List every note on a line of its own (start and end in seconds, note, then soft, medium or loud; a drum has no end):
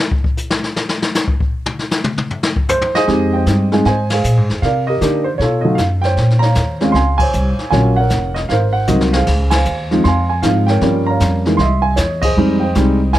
0.11 kick medium
0.24 kick medium
0.37 hi-hat pedal medium
0.50 snare loud
0.64 snare medium
0.76 snare loud
0.89 snare loud
1.02 snare loud
1.15 snare loud
1.15 hi-hat pedal medium
1.28 kick medium
1.40 kick medium
1.66 mid tom loud
1.79 snare soft
1.91 snare loud
1.91 hi-hat pedal medium
2.04 mid tom loud
2.18 mid tom loud
2.30 floor tom medium
2.43 snare loud
2.56 kick medium
2.69 2.93 C5 loud
2.69 floor tom loud
2.69 hi-hat pedal medium
2.81 floor tom loud
2.95 3.32 G#4 medium
2.95 3.32 C5 medium
2.95 3.34 D#5 loud
2.95 snare medium
3.07 3.45 F2 medium
3.07 3.67 G#3 medium
3.07 3.67 C4 medium
3.07 3.67 D#4 medium
3.07 3.67 G4 medium
3.07 brush sweep soft
3.07 kick soft
3.07 snare soft
3.33 3.87 C5 medium
3.33 3.87 D#5 medium
3.33 3.87 G5 medium
3.46 3.84 G2 medium
3.46 kick soft
3.46 snare medium
3.46 hi-hat pedal soft
3.72 3.84 G#3 medium
3.72 3.84 C4 medium
3.72 3.85 D#4 medium
3.72 3.85 G#4 medium
3.72 snare soft
3.85 4.23 G#2 medium
3.85 4.11 C5 medium
3.85 4.60 D#5 medium
3.85 4.12 G#5 medium
3.85 brush sweep soft
3.85 kick soft
3.85 snare soft
4.10 4.61 G#4 medium
4.10 4.60 C5 medium
4.10 4.61 F5 medium
4.10 snare medium
4.10 ride medium
4.24 4.37 A#2 medium
4.24 hi-hat pedal medium
4.37 4.50 G#2 medium
4.49 4.62 F2 medium
4.49 snare soft
4.62 5.00 C3 medium
4.62 4.88 A#4 medium
4.62 5.38 D5 medium
4.62 4.88 F5 medium
4.62 brush sweep medium
4.62 kick soft
4.62 snare soft
4.87 5.01 G4 medium
4.87 5.38 A#4 medium
4.87 5.24 D#5 medium
5.01 5.39 D3 medium
5.01 5.24 A#3 medium
5.01 5.24 D4 medium
5.01 5.24 D#4 medium
5.01 5.25 G4 medium
5.01 kick soft
5.01 snare soft
5.01 hi-hat pedal soft
5.24 5.29 C5 medium
5.38 5.77 B2 medium
5.38 5.64 F4 medium
5.38 6.14 A4 medium
5.38 5.62 C#5 medium
5.38 brush sweep soft
5.38 kick soft
5.38 snare soft
5.61 5.77 F#3 medium
5.61 5.77 A3 medium
5.61 5.77 D#4 medium
5.61 5.76 D#5 medium
5.66 5.78 F4 medium
5.75 6.16 F#2 medium
5.75 5.81 F5 medium
5.75 kick soft
5.75 snare medium
5.75 hi-hat pedal medium
6.02 6.78 C5 medium
6.02 6.41 C#5 medium
6.02 6.43 G5 medium
6.02 snare soft
6.17 6.55 A#2 medium
6.17 brush sweep soft
6.17 kick soft
6.17 snare soft
6.30 snare soft
6.39 7.16 C#5 medium
6.39 6.94 F5 medium
6.39 6.95 A#5 loud
6.39 snare soft
6.55 6.93 D#2 medium
6.55 kick soft
6.55 snare soft
6.55 hi-hat pedal soft
6.80 6.94 G#3 medium
6.80 6.94 C4 medium
6.80 6.94 C#4 medium
6.80 6.94 F4 medium
6.80 snare soft
6.92 7.32 C#2 medium
6.92 7.69 F5 medium
6.92 7.16 G#5 medium
6.92 7.20 C6 loud
6.92 brush sweep soft
6.92 kick soft
6.92 snare soft
7.18 7.70 C5 medium
7.18 7.70 C#5 medium
7.18 7.69 G#5 loud
7.18 kick medium
7.18 crash medium
7.33 7.57 C2 medium
7.33 hi-hat pedal medium
7.59 muted upright bass stroke soft
7.59 snare soft
7.70 8.10 A#1 medium
7.70 7.95 F#3 medium
7.70 7.95 A#3 medium
7.70 7.95 C#4 medium
7.70 7.96 F4 medium
7.70 7.99 C#5 medium
7.70 8.47 F5 medium
7.70 7.98 G#5 medium
7.70 brush sweep soft
7.70 kick soft
7.70 snare soft
7.96 8.48 A#4 medium
7.96 8.48 C#5 medium
7.96 8.33 F#5 medium
8.10 8.49 F1 medium
8.10 kick soft
8.10 snare medium
8.10 hi-hat pedal medium
8.34 8.39 D#5 medium
8.34 snare soft
8.49 8.87 G#1 medium
8.49 9.25 A#4 medium
8.49 9.15 C5 medium
8.49 8.55 F5 medium
8.49 brush sweep soft
8.49 kick soft
8.49 snare soft
8.73 8.88 F#5 medium
8.87 9.26 C2 medium
8.87 9.11 F#3 medium
8.87 9.11 A#3 medium
8.87 9.11 C4 medium
8.87 9.12 D#4 medium
8.87 9.14 D#5 medium
8.87 snare soft
8.87 hi-hat pedal medium
9.01 snare medium
9.13 9.53 C5 medium
9.13 9.52 F5 medium
9.13 snare medium
9.17 9.89 G#4 medium
9.27 9.65 C#2 medium
9.27 brush sweep soft
9.27 kick medium
9.27 snare soft
9.27 crash medium
9.51 10.27 C5 medium
9.51 10.06 F5 medium
9.51 10.00 G#5 medium
9.51 snare medium
9.51 ride medium
9.65 10.04 D#2 medium
9.65 hi-hat pedal soft
9.91 10.03 F3 medium
9.91 10.04 G#3 medium
9.91 10.04 C4 medium
9.91 10.04 D#4 medium
9.91 snare soft
10.04 10.42 F2 medium
10.04 10.41 F5 medium
10.04 10.28 G#5 medium
10.04 10.30 C6 medium
10.04 brush sweep soft
10.04 kick soft
10.04 snare soft
10.30 10.42 G#5 medium
10.43 10.81 G#2 medium
10.43 10.80 F3 soft
10.43 10.82 G#3 soft
10.43 10.83 C4 soft
10.43 10.83 D#4 medium
10.43 10.69 F5 medium
10.43 kick soft
10.43 snare medium
10.43 hi-hat pedal soft
10.67 11.43 A#4 medium
10.67 11.09 C#5 medium
10.67 11.04 G5 medium
10.67 snare soft
10.81 11.19 G2 medium
10.81 11.41 F3 medium
10.81 11.41 G3 medium
10.81 11.41 A#3 medium
10.81 11.42 C#4 medium
10.81 brush sweep soft
10.81 kick soft
10.81 snare soft
11.06 11.58 C#5 medium
11.06 11.61 A#5 medium
11.11 11.58 F5 medium
11.20 11.58 F2 medium
11.20 kick soft
11.20 snare soft
11.20 hi-hat pedal medium
11.45 11.58 E3 medium
11.45 11.58 G#3 medium
11.45 11.59 A#3 soft
11.45 11.59 D#4 medium
11.45 snare soft
11.57 11.96 C2 medium
11.57 12.20 D#5 medium
11.57 11.84 C6 loud
11.57 brush sweep soft
11.57 kick soft
11.57 snare soft
11.61 12.34 E5 medium
11.82 11.97 G#5 medium
11.96 12.36 E2 medium
11.96 12.23 C#5 medium
11.96 kick soft
11.96 snare medium
11.96 hi-hat pedal medium
12.22 12.97 G#4 medium
12.22 12.62 C5 medium
12.22 12.62 D#5 loud
12.22 kick medium
12.22 crash medium
12.37 12.74 F2 medium
12.37 12.60 G3 medium
12.37 12.60 G#3 medium
12.37 12.60 C4 medium
12.37 12.60 D#4 medium
12.37 brush sweep soft
12.60 13.15 D#5 medium
12.60 13.10 G5 medium
12.64 13.15 C5 medium
12.75 13.13 C2 medium
12.75 12.98 G3 medium
12.75 12.99 G#3 medium
12.75 12.99 C4 medium
12.75 12.99 D#4 medium
12.75 kick soft
12.75 snare medium
12.75 hi-hat pedal soft
13.13 13.19 D#2 medium
13.13 13.19 G#5 medium
13.13 brush sweep soft
13.13 kick soft
13.13 snare soft